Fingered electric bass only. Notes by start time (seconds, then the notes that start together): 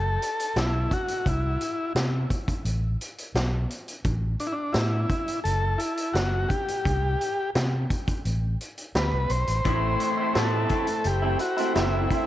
Already playing: F#1
0.56 B1
1.26 C2
1.95 C3
2.65 A1
3.35 B1
4.04 A1
4.74 A2
5.45 F#1
6.14 F#1
6.85 C2
7.55 C3
8.25 A1
8.95 D2
9.12 C2
9.30 B1
9.48 A1
9.65 A1
10.36 A2
11.05 F#1
11.76 F#1